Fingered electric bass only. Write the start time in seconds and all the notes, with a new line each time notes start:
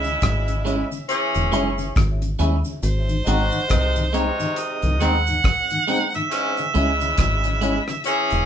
Already playing: C#2
0.23 G#1
1.35 E1
1.53 F#1
1.97 G#1
2.40 D#2
2.83 G#1
3.27 G#1
3.71 C2
4.83 C2
5.00 D#2
6.75 C#2
7.18 G#1
8.32 E1